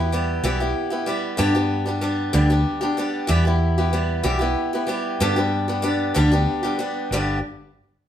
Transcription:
Already playing: E2 E4 G4
0.00 B3
0.12 G3 B3 E4 G4
0.43 B1 E3 G3 B3 E4 G4
0.60 B3 E4 G4
0.90 B3 E4 G4
1.06 G3 B3 E4 G4
1.37 G2 D3 G3 B3 D4 G4
1.55 G3 B3 D4 G4
1.86 G3 B3 D4 G4
2.01 G3 B3 D4 G4
2.33 D2 G2 D3 G3 B3 D4 G4
2.50 G3 B3 D4 G4
2.81 G3 B3 D4 G4
2.97 G3 B3 D4 G4
3.27 E2 E3 G3 B3 E4 G4
3.45 B3 E4 G4
3.78 B3 E4 G4
3.93 G3 B3 E4 G4
4.23 B1 E3 G3 B3 E4 G4
4.39 B3 E4 G4
4.73 B3 E4 G4
4.87 G3 B3 E4 G4
5.20 G2 D3 G3 B3 D4 G4
5.36 G3 B3 D4 G4
5.68 G3 B3 D4 G4
5.82 G3 B3 D4 G4
6.14 D2 G2 D3 G3 B3 D4 G4
6.31 G3 B3 D4 G4
6.63 G3 B3 D4 G4
6.79 G3 B3 D4 G4
7.11 G1 G2 D3 G3 B3 D4 G4

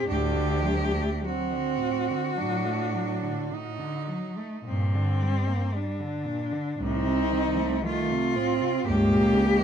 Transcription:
0.07 D2 A2 D4 G4
0.36 D3
0.63 F#3
0.94 A3
1.21 F#3 C4 F#4
1.52 D3
1.79 A2
2.10 D3
2.37 A2 F#3 D4
2.66 A3
2.93 F#3
3.23 D3
3.51 A2 D#4
3.78 D3
4.08 F#3
4.37 A3
4.65 G2 A#2 C4
4.95 D3
5.22 G3
5.48 A#3
5.74 G3 D4
6.00 D3
6.25 A#2
6.52 D3
6.80 C2 A2 C4 D#4
7.06 C3
7.32 D#3
7.57 A3
7.84 D#3 A3 F4
8.10 C3
8.36 A2 C4
8.62 C3
8.86 C#2 G2 A#3 G4
9.10 A#2
9.35 C#3
9.59 E3

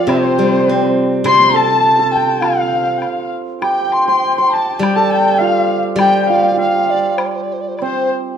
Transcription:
Already playing: F3 F4 G4 A4 D5 F5
0.05 C3 C4 D5
0.09 C5, high woodblock
0.16 C4
0.23 C4
0.31 C4
0.38 G3 C4
0.45 C4
0.53 C4
0.61 C4
0.66 C4
0.73 C4
0.82 C4
1.24 C3 C5 C6, high woodblock
1.54 A4 A5
1.99 A4 A5
2.12 G5
2.17 G5
2.41 F4 F5, high woodblock
2.45 F5
2.53 G5
2.61 F5
2.68 G5
2.76 F5
2.83 G5
2.89 F5
2.98 G5
3.02 high woodblock
3.06 F5
3.62 G4 G5, high woodblock
3.92 C6
4.08 C5 C6
4.37 C5 C6
4.52 A5
4.79 G3 G4 G5 A5, high woodblock
4.95 A4 A5
5.11 G5
5.38 F4 F5
5.96 G3 G5, high woodblock
6.00 G4
6.24 F5 G5
6.30 F4 F5
6.51 G4
6.57 F4 F5
6.90 D5
7.18 C5, high woodblock
7.26 D5
7.36 C5
7.43 D5
7.53 C5
7.61 D5
7.68 C5
7.76 D5, high woodblock
7.81 C4 C5

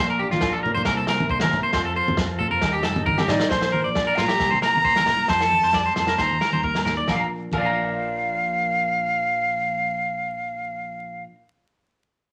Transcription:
Already playing: A#3 A#5
0.00 A#1 A#2 D5 F5
0.10 A#4
0.19 D4 G4
0.31 A#1 F4, snare, high conga
0.41 F4, kick, snare, low agogo
0.53 A4
0.63 A#4, low conga
0.74 A#1 C5, low conga
0.85 C2 C3 G3 A#3 E4 A#4 C5 E5, kick, snare, low agogo
0.90 A#4
0.97 A4
1.07 A#3 A#4, snare, low agogo
1.20 high conga
1.29 C2 D4 C5, kick
1.40 E4 A#4, snare, high conga, low agogo
1.51 A#4, snare, low conga
1.63 C5
1.72 F2 F3 C4 F4 C5 F5 A5, kick, snare, low agogo
1.77 A4
1.85 A4
1.96 F4 C5
2.07 F2, high conga
2.17 G4, kick, snare, low agogo
2.30 A4
2.39 A4, low conga
2.51 F2 A#4
2.61 D#2 D#3 G3 A#3 D#4 G4 D#5 G5 A#5, kick, snare, low agogo
2.73 G4
2.83 F1 A4, muted clean electric guitar stroke, snare, low agogo
2.96 high conga
3.06 G1 D3 A#4, kick, high conga
3.18 G4, snare, high conga, low agogo
3.28 A1 D#4 D5, snare, high conga, low conga
3.40 snare
3.49 A#1 A#2 F3 D4 C5, kick, snare, low agogo
3.54 A#4
3.62 snare
3.72 A#4, high conga
3.84 A#1 D5
3.93 D4 D5, kick, snare, low agogo
4.07 A#4
4.16 A#1 D4 F4 A#5, snare, low conga
4.28 F4 G4, snare
4.40 C2 C3 G3 A#3 E4 A#4, kick, snare, low agogo
4.51 C5, high conga
4.62 G3 A#4 A#5, snare, low agogo
4.75 C2, high conga
4.84 A#3 C5, kick
4.96 C2 A#4, snare, high conga, low agogo
5.06 E4 A#4, snare, low conga
5.28 F2 F3 C5 A5, kick, snare, low agogo
5.41 A4, snare
5.50 C4, high conga
5.63 F2 C5, snare
5.72 G3 D5, kick, snare, low agogo
5.86 C5
5.96 F2 F3 A5, snare, low conga
6.07 A#4, snare
6.18 D#2 D#3 C5 A#5, kick, snare, low agogo
6.31 high conga
6.41 G3 A#4, snare, low agogo
6.52 D#2 C5, high conga
6.63 A#3 A#4, kick
6.74 D#2, snare, high conga, low agogo
6.85 D#4 A#4, snare, low conga
6.97 D5
7.07 A#1 A#2 A#4 F5, kick, snare, high conga, low agogo
7.11 F3 D5
7.16 D4 F5
7.20 F4 A#5
7.28 A#4
7.51 A#1 A#2 A#4 F5, kick, crash, high conga, low agogo
7.57 F3 D5
7.62 D4 F5 A#5
7.68 F4
7.73 A#4

